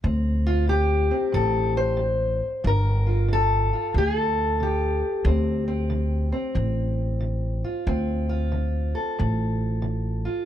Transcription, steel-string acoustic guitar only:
0.04 D2 C4
0.47 F4
0.67 D3 G4
1.11 C4
1.32 A2 A4
1.77 C5
1.97 D3
2.64 G2 A#4
3.07 F4
3.28 D3
3.33 A4
3.73 F4
3.96 D3 G#4
4.18 A4
4.60 D3 G4
5.26 D2 C4
5.68 C4
5.90 D3
6.32 C4
6.55 A2
7.20 D3
7.64 F4
7.87 D2 C4
8.29 F4
8.52 D3
8.95 A4
9.19 A2
9.82 D3
10.25 F4

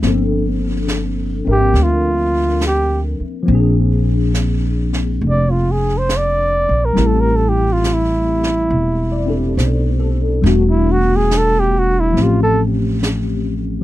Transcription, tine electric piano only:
0.02 F3 A#3 C4
0.06 D4 A4
1.44 C4 D4 A#4 E5
3.43 F3 A#3
3.48 C4 D4
3.54 G#4
6.93 G3 A3 C4
6.97 E4 G4
9.12 D5
9.26 C4 D4 G4 A4
9.57 C5
10.00 A4
10.42 G3 A3 B3 D4
10.46 F#4
12.12 F3 A3
12.17 C4 C#4
12.22 G4

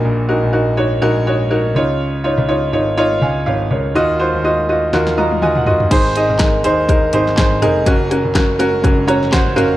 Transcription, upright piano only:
Already playing: A#2 D#4 F#4 A#4
0.29 D#4 F#4 A#4
0.53 D#4 F#4 A#4
0.77 D#4 F#4 C#5
1.02 D#4 F#4 A#4
1.27 D#4 F#4 C#5
1.51 D#4 F#4 A#4
1.76 C#3 D#4 F4 C#5
2.24 D#4 F4 C#5
2.49 D#4 F4 C#5
2.73 D#4 F4 C#5
2.97 D#4 F4 C#5
3.22 F5 G#5
3.46 C#5 F5
3.71 A#4 C#5
3.95 D#3 F4 F#4 D#5
4.19 F4 F#4 C5
4.44 F4 F#4 D#5
4.69 F4 F#4 D#5
4.93 F4 F#4 A#4
5.18 F4 F#4 D#5 A#5
5.42 F4 F#4 D#5 G#5
5.56 F#5
5.66 F4 F#4 D#5
5.91 G#2 D#4 G#4 C5
6.16 D#4 G#4 D#5
6.40 D#4 G#4 A#4
6.64 D#4 G#4 C5
6.89 D#4 G#4 A#4
7.13 D#4 G#4 C5
7.38 D#4 G#4 C5
7.62 D#4 G#4 A#4
7.87 C#4 F#4 A#4
8.11 C#4 F#4 A#4
8.36 C#4 F#4 A#4
8.59 C#4 F#4 A#4
8.83 C#4 F#4 A#4
9.07 C#4 F#4 C#5 A#5
9.32 C#4 F#4 C5 F#5
9.56 C#4 F#4 A#4 F5

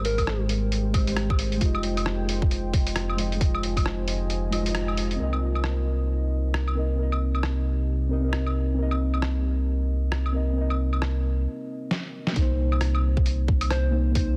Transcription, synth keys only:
Already playing: G#3 G4 C5
0.93 G#3 G4 C5
1.04 G#3 G4
1.12 C5
1.57 G#3
1.61 F4 D#5
3.17 G#3 F4
3.21 D#5
3.36 G#3
3.40 F4
3.44 D#5
4.50 G#3 F4 D#5
4.62 G#3 F4
4.70 D#5
5.16 C4 A#4
5.23 D#5
6.75 C4 A#4 D#5
6.95 C4 A#4
7.03 D#5
8.09 C4 A#4 D#5
8.20 C4 A#4
8.29 D#5
8.75 C4 A#4
8.82 D#5
10.32 C4 A#4 D#5
10.53 C4
10.57 A#4
10.61 D#5
12.32 A#3
12.36 D#4
12.40 C5
13.91 A#3 D#4 C5
14.11 A#3 D#4
14.19 C5

